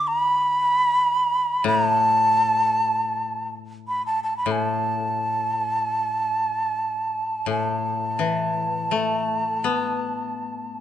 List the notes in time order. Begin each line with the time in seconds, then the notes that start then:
Already playing: D3
0.07 A#5
0.19 B5
1.64 A2 A#5
1.86 A5
3.88 B5
4.06 A5
4.23 A5
4.37 B5
4.46 A2
4.51 A5
7.46 A2 A5
8.19 E3
8.91 A3
9.64 B3